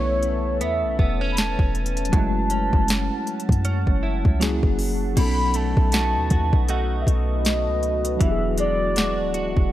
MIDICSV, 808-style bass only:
0, 0, Header, 1, 2, 480
1, 0, Start_track
1, 0, Tempo, 759494
1, 1347, Time_signature, 4, 2, 24, 8
1, 6144, End_track
2, 0, Start_track
2, 0, Title_t, "808-style bass"
2, 0, Program_c, 0, 38
2, 0, Note_on_c, 0, 35, 103
2, 389, Note_on_c, 0, 40, 92
2, 398, Note_off_c, 0, 35, 0
2, 528, Note_on_c, 0, 35, 97
2, 537, Note_off_c, 0, 40, 0
2, 623, Note_off_c, 0, 35, 0
2, 627, Note_on_c, 0, 28, 97
2, 991, Note_off_c, 0, 28, 0
2, 1006, Note_on_c, 0, 28, 104
2, 1333, Note_off_c, 0, 28, 0
2, 1347, Note_on_c, 0, 30, 106
2, 1711, Note_off_c, 0, 30, 0
2, 1726, Note_on_c, 0, 30, 102
2, 1957, Note_off_c, 0, 30, 0
2, 2207, Note_on_c, 0, 42, 103
2, 2437, Note_off_c, 0, 42, 0
2, 2447, Note_on_c, 0, 30, 92
2, 2677, Note_off_c, 0, 30, 0
2, 2688, Note_on_c, 0, 37, 99
2, 2918, Note_off_c, 0, 37, 0
2, 2928, Note_on_c, 0, 30, 99
2, 3254, Note_off_c, 0, 30, 0
2, 3269, Note_on_c, 0, 35, 108
2, 3632, Note_off_c, 0, 35, 0
2, 3647, Note_on_c, 0, 35, 112
2, 3890, Note_on_c, 0, 39, 98
2, 3900, Note_off_c, 0, 35, 0
2, 3984, Note_off_c, 0, 39, 0
2, 3988, Note_on_c, 0, 39, 109
2, 4121, Note_off_c, 0, 39, 0
2, 4127, Note_on_c, 0, 35, 100
2, 4454, Note_off_c, 0, 35, 0
2, 4468, Note_on_c, 0, 35, 106
2, 4850, Note_on_c, 0, 37, 101
2, 4859, Note_off_c, 0, 35, 0
2, 5172, Note_off_c, 0, 37, 0
2, 5189, Note_on_c, 0, 28, 104
2, 5808, Note_on_c, 0, 26, 97
2, 5818, Note_off_c, 0, 28, 0
2, 6035, Note_off_c, 0, 26, 0
2, 6047, Note_on_c, 0, 28, 94
2, 6144, Note_off_c, 0, 28, 0
2, 6144, End_track
0, 0, End_of_file